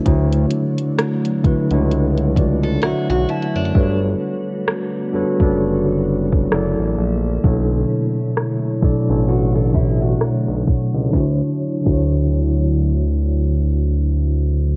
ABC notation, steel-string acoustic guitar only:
X:1
M:4/4
L:1/16
Q:"Swing 16ths" 1/4=65
K:D
V:1 name="Steel-string acoustic guitar"
z8 z3 A F F E D- | D z12 z3 | z8 F A E F4- F | z16 |]